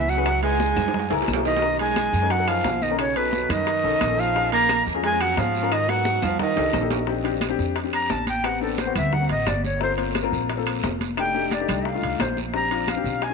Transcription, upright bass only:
0.00 0.71 C#2 medium
0.77 1.09 F#2 medium
1.11 1.27 C#2 medium
1.28 2.08 B1 medium
2.13 2.61 F#2 medium
2.64 3.44 B1 medium
3.49 3.81 F#2 medium
3.84 4.00 B1 medium
4.01 4.81 A#1 medium
4.87 5.34 F2 medium
5.37 6.17 G#2 medium
6.23 6.54 F2 medium
6.57 6.73 C2 medium
6.74 7.53 A#1 medium
7.59 8.07 F2 medium
8.10 8.90 A1 medium
8.96 9.27 D2 medium
9.30 9.46 A1 medium
9.47 10.27 G1 medium
10.32 10.80 A#1 medium
10.83 11.63 F1 medium
11.69 12.01 C2 medium
12.03 12.19 C2 medium
12.20 12.99 A#1 medium
13.04 13.34 B1 medium

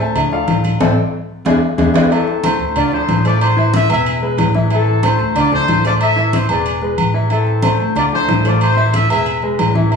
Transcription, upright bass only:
0.00 0.45 D2 medium
0.47 0.78 A1 medium
0.80 0.92 A1 loud
1.45 1.57 E2 loud
1.78 1.90 E2 loud
2.59 3.05 D2 medium
3.08 3.84 A1 loud
3.89 4.35 E1 loud
4.37 5.14 A1 loud
5.19 5.65 D2 loud
5.68 6.44 A1 medium
6.49 6.95 E1 medium
6.98 7.74 A1 medium
7.80 8.25 D2 medium
8.28 9.04 A1 loud
9.10 9.55 E1 medium
9.59 9.96 A1 medium

